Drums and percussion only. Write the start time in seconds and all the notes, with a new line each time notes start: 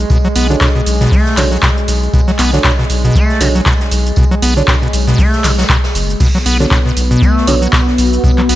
0.10 kick, tambourine, shaker
0.25 shaker
0.35 open hi-hat, tambourine, shaker
0.50 shaker
0.61 kick, snare, clap, tambourine, shaker
0.76 shaker
0.86 open hi-hat, tambourine, shaker
1.01 snare, shaker
1.12 kick, open hi-hat, shaker
1.26 snare, shaker
1.37 clap, open hi-hat, tambourine, shaker
1.52 shaker
1.62 kick, snare, clap, tambourine, shaker
1.78 shaker
1.88 open hi-hat, tambourine, shaker
2.03 shaker
2.14 kick, tambourine, shaker
2.28 snare, shaker
2.39 clap, open hi-hat, tambourine, shaker
2.53 snare, shaker
2.64 kick, snare, clap, tambourine, shaker
2.79 snare, shaker
2.90 open hi-hat, shaker
3.05 shaker
3.15 kick, tambourine, shaker
3.30 snare, shaker
3.41 open hi-hat, tambourine, shaker
3.56 shaker
3.66 kick, snare, clap, tambourine, shaker
3.80 snare, shaker
3.91 open hi-hat, tambourine, shaker
4.06 shaker
4.16 kick, tambourine, shaker
4.32 shaker
4.42 open hi-hat, tambourine, shaker
4.57 shaker
4.68 kick, snare, clap, tambourine, shaker
4.83 shaker
4.93 open hi-hat, tambourine, shaker
5.08 snare, shaker
5.18 kick, open hi-hat, shaker
5.33 snare, shaker
5.44 snare, clap, open hi-hat, tambourine, shaker
5.59 snare, tambourine, shaker
5.64 snare, tambourine
5.70 kick, clap, shaker
5.84 snare, tambourine, shaker
5.95 open hi-hat, tambourine, shaker
6.10 shaker
6.20 kick, tambourine, crash, shaker
6.35 snare
6.46 open hi-hat, tambourine, shaker
6.60 snare, shaker
6.71 kick, snare, clap, tambourine, shaker
6.86 snare
6.96 open hi-hat, tambourine, shaker
7.11 shaker
7.22 kick, tambourine, shaker
7.37 snare
7.47 open hi-hat, tambourine, shaker
7.62 shaker
7.73 kick, snare, clap, tambourine, shaker
7.87 snare
7.98 open hi-hat, tambourine, shaker
8.13 shaker
8.24 kick, tambourine, shaker
8.38 clap
8.49 open hi-hat, tambourine, shaker